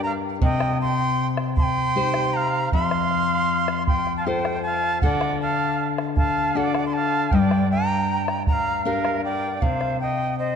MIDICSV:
0, 0, Header, 1, 5, 480
1, 0, Start_track
1, 0, Key_signature, -2, "minor"
1, 0, Tempo, 766284
1, 262, Time_signature, 3, 2, 24, 8
1, 6612, End_track
2, 0, Start_track
2, 0, Title_t, "Quena"
2, 0, Program_c, 0, 77
2, 20, Note_on_c, 0, 82, 93
2, 74, Note_off_c, 0, 82, 0
2, 270, Note_on_c, 0, 79, 83
2, 490, Note_off_c, 0, 79, 0
2, 510, Note_on_c, 0, 84, 101
2, 794, Note_off_c, 0, 84, 0
2, 981, Note_on_c, 0, 84, 104
2, 1463, Note_on_c, 0, 82, 96
2, 1472, Note_off_c, 0, 84, 0
2, 1703, Note_off_c, 0, 82, 0
2, 1706, Note_on_c, 0, 84, 96
2, 2400, Note_off_c, 0, 84, 0
2, 2422, Note_on_c, 0, 84, 93
2, 2605, Note_off_c, 0, 84, 0
2, 2615, Note_on_c, 0, 81, 64
2, 2665, Note_on_c, 0, 79, 86
2, 2674, Note_off_c, 0, 81, 0
2, 2895, Note_off_c, 0, 79, 0
2, 2899, Note_on_c, 0, 81, 92
2, 3124, Note_off_c, 0, 81, 0
2, 3141, Note_on_c, 0, 78, 82
2, 3366, Note_off_c, 0, 78, 0
2, 3387, Note_on_c, 0, 81, 84
2, 3673, Note_off_c, 0, 81, 0
2, 3861, Note_on_c, 0, 81, 85
2, 4111, Note_on_c, 0, 78, 84
2, 4120, Note_off_c, 0, 81, 0
2, 4294, Note_off_c, 0, 78, 0
2, 4298, Note_on_c, 0, 84, 68
2, 4345, Note_on_c, 0, 81, 95
2, 4354, Note_off_c, 0, 84, 0
2, 4581, Note_on_c, 0, 79, 83
2, 4590, Note_off_c, 0, 81, 0
2, 4822, Note_off_c, 0, 79, 0
2, 4830, Note_on_c, 0, 82, 95
2, 5281, Note_off_c, 0, 82, 0
2, 5307, Note_on_c, 0, 82, 88
2, 5528, Note_off_c, 0, 82, 0
2, 5543, Note_on_c, 0, 77, 80
2, 5766, Note_off_c, 0, 77, 0
2, 5791, Note_on_c, 0, 79, 83
2, 5974, Note_off_c, 0, 79, 0
2, 5974, Note_on_c, 0, 79, 64
2, 6022, Note_on_c, 0, 77, 77
2, 6032, Note_off_c, 0, 79, 0
2, 6263, Note_off_c, 0, 77, 0
2, 6267, Note_on_c, 0, 79, 82
2, 6488, Note_off_c, 0, 79, 0
2, 6509, Note_on_c, 0, 75, 85
2, 6612, Note_off_c, 0, 75, 0
2, 6612, End_track
3, 0, Start_track
3, 0, Title_t, "Quena"
3, 0, Program_c, 1, 77
3, 38, Note_on_c, 1, 77, 77
3, 90, Note_off_c, 1, 77, 0
3, 269, Note_on_c, 1, 75, 85
3, 489, Note_off_c, 1, 75, 0
3, 517, Note_on_c, 1, 79, 85
3, 799, Note_off_c, 1, 79, 0
3, 996, Note_on_c, 1, 81, 83
3, 1019, Note_on_c, 1, 79, 90
3, 1026, Note_off_c, 1, 81, 0
3, 1481, Note_on_c, 1, 77, 79
3, 1491, Note_off_c, 1, 79, 0
3, 1707, Note_off_c, 1, 77, 0
3, 1711, Note_on_c, 1, 77, 92
3, 2402, Note_off_c, 1, 77, 0
3, 2429, Note_on_c, 1, 79, 76
3, 2609, Note_off_c, 1, 79, 0
3, 2627, Note_on_c, 1, 77, 57
3, 2679, Note_on_c, 1, 72, 77
3, 2689, Note_off_c, 1, 77, 0
3, 2912, Note_off_c, 1, 72, 0
3, 2917, Note_on_c, 1, 77, 76
3, 3134, Note_off_c, 1, 77, 0
3, 3161, Note_on_c, 1, 74, 78
3, 3376, Note_off_c, 1, 74, 0
3, 3397, Note_on_c, 1, 77, 79
3, 3678, Note_off_c, 1, 77, 0
3, 3864, Note_on_c, 1, 77, 75
3, 4112, Note_on_c, 1, 74, 76
3, 4121, Note_off_c, 1, 77, 0
3, 4304, Note_off_c, 1, 74, 0
3, 4315, Note_on_c, 1, 81, 56
3, 4362, Note_on_c, 1, 77, 81
3, 4371, Note_off_c, 1, 81, 0
3, 4603, Note_on_c, 1, 75, 69
3, 4612, Note_off_c, 1, 77, 0
3, 4631, Note_on_c, 1, 74, 75
3, 4637, Note_off_c, 1, 75, 0
3, 4829, Note_off_c, 1, 74, 0
3, 4832, Note_on_c, 1, 79, 82
3, 5283, Note_off_c, 1, 79, 0
3, 5320, Note_on_c, 1, 78, 72
3, 5342, Note_on_c, 1, 77, 78
3, 5348, Note_off_c, 1, 78, 0
3, 5535, Note_off_c, 1, 77, 0
3, 5554, Note_on_c, 1, 70, 74
3, 5772, Note_off_c, 1, 70, 0
3, 5792, Note_on_c, 1, 74, 74
3, 5985, Note_off_c, 1, 74, 0
3, 5985, Note_on_c, 1, 74, 53
3, 6040, Note_on_c, 1, 72, 71
3, 6050, Note_off_c, 1, 74, 0
3, 6271, Note_off_c, 1, 72, 0
3, 6279, Note_on_c, 1, 75, 71
3, 6494, Note_off_c, 1, 75, 0
3, 6507, Note_on_c, 1, 72, 72
3, 6612, Note_off_c, 1, 72, 0
3, 6612, End_track
4, 0, Start_track
4, 0, Title_t, "Nylon-string guitar"
4, 0, Program_c, 2, 24
4, 0, Note_on_c, 2, 43, 67
4, 0, Note_on_c, 2, 62, 54
4, 0, Note_on_c, 2, 67, 46
4, 0, Note_on_c, 2, 70, 54
4, 237, Note_off_c, 2, 43, 0
4, 250, Note_off_c, 2, 62, 0
4, 251, Note_off_c, 2, 67, 0
4, 251, Note_off_c, 2, 70, 0
4, 261, Note_on_c, 2, 48, 71
4, 1226, Note_on_c, 2, 63, 52
4, 1229, Note_on_c, 2, 67, 48
4, 1233, Note_on_c, 2, 72, 57
4, 1678, Note_off_c, 2, 48, 0
4, 1691, Note_off_c, 2, 63, 0
4, 1691, Note_off_c, 2, 67, 0
4, 1692, Note_off_c, 2, 72, 0
4, 1712, Note_on_c, 2, 41, 65
4, 2671, Note_on_c, 2, 65, 50
4, 2673, Note_on_c, 2, 69, 44
4, 2678, Note_on_c, 2, 72, 55
4, 3123, Note_off_c, 2, 41, 0
4, 3133, Note_off_c, 2, 65, 0
4, 3134, Note_off_c, 2, 69, 0
4, 3137, Note_off_c, 2, 72, 0
4, 3151, Note_on_c, 2, 50, 67
4, 4102, Note_on_c, 2, 62, 50
4, 4106, Note_on_c, 2, 66, 45
4, 4114, Note_on_c, 2, 69, 56
4, 4562, Note_off_c, 2, 50, 0
4, 4568, Note_off_c, 2, 62, 0
4, 4571, Note_off_c, 2, 66, 0
4, 4574, Note_off_c, 2, 69, 0
4, 4589, Note_on_c, 2, 43, 67
4, 5546, Note_on_c, 2, 62, 54
4, 5550, Note_on_c, 2, 67, 46
4, 5551, Note_on_c, 2, 70, 60
4, 6000, Note_off_c, 2, 43, 0
4, 6010, Note_off_c, 2, 62, 0
4, 6012, Note_off_c, 2, 67, 0
4, 6012, Note_off_c, 2, 70, 0
4, 6026, Note_on_c, 2, 48, 67
4, 6612, Note_off_c, 2, 48, 0
4, 6612, End_track
5, 0, Start_track
5, 0, Title_t, "Bombo"
5, 259, Note_on_c, 9, 43, 75
5, 322, Note_off_c, 9, 43, 0
5, 379, Note_on_c, 9, 37, 55
5, 441, Note_off_c, 9, 37, 0
5, 861, Note_on_c, 9, 37, 62
5, 924, Note_off_c, 9, 37, 0
5, 982, Note_on_c, 9, 43, 76
5, 1045, Note_off_c, 9, 43, 0
5, 1340, Note_on_c, 9, 37, 52
5, 1402, Note_off_c, 9, 37, 0
5, 1705, Note_on_c, 9, 43, 65
5, 1768, Note_off_c, 9, 43, 0
5, 1825, Note_on_c, 9, 37, 50
5, 1887, Note_off_c, 9, 37, 0
5, 1947, Note_on_c, 9, 37, 21
5, 2009, Note_off_c, 9, 37, 0
5, 2306, Note_on_c, 9, 37, 54
5, 2368, Note_off_c, 9, 37, 0
5, 2427, Note_on_c, 9, 43, 71
5, 2489, Note_off_c, 9, 43, 0
5, 2548, Note_on_c, 9, 37, 21
5, 2611, Note_off_c, 9, 37, 0
5, 2672, Note_on_c, 9, 37, 21
5, 2734, Note_off_c, 9, 37, 0
5, 2787, Note_on_c, 9, 37, 52
5, 2850, Note_off_c, 9, 37, 0
5, 3027, Note_on_c, 9, 37, 21
5, 3089, Note_off_c, 9, 37, 0
5, 3143, Note_on_c, 9, 43, 72
5, 3206, Note_off_c, 9, 43, 0
5, 3263, Note_on_c, 9, 37, 53
5, 3326, Note_off_c, 9, 37, 0
5, 3748, Note_on_c, 9, 37, 55
5, 3811, Note_off_c, 9, 37, 0
5, 3863, Note_on_c, 9, 43, 75
5, 3925, Note_off_c, 9, 43, 0
5, 4225, Note_on_c, 9, 37, 52
5, 4288, Note_off_c, 9, 37, 0
5, 4581, Note_on_c, 9, 43, 71
5, 4644, Note_off_c, 9, 43, 0
5, 4705, Note_on_c, 9, 37, 50
5, 4768, Note_off_c, 9, 37, 0
5, 5187, Note_on_c, 9, 37, 51
5, 5250, Note_off_c, 9, 37, 0
5, 5305, Note_on_c, 9, 43, 71
5, 5367, Note_off_c, 9, 43, 0
5, 5666, Note_on_c, 9, 37, 52
5, 5729, Note_off_c, 9, 37, 0
5, 6025, Note_on_c, 9, 43, 62
5, 6088, Note_off_c, 9, 43, 0
5, 6143, Note_on_c, 9, 37, 46
5, 6206, Note_off_c, 9, 37, 0
5, 6612, End_track
0, 0, End_of_file